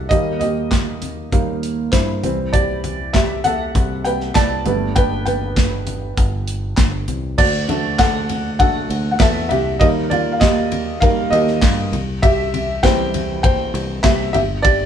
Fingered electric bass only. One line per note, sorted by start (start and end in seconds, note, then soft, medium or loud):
0.11 1.28 D#2 medium
1.33 1.89 D#2 medium
1.93 2.21 G2 medium
2.23 3.71 C2 medium
3.75 4.32 C2 loud
4.36 4.64 C2 medium
4.66 6.14 G1 medium
6.18 6.74 G1 medium
6.78 7.06 G1 medium
7.09 7.37 C2 medium
7.38 8.86 D2 loud
8.90 9.18 D2 medium
9.20 9.48 E2 medium
9.51 9.79 C2 medium
9.81 11.28 D#2 loud
11.32 11.60 D#2 loud
11.62 11.90 G2 loud
11.92 13.70 C2 loud
13.74 14.02 C2 medium
14.04 14.32 C2 loud
14.34 14.86 G1 medium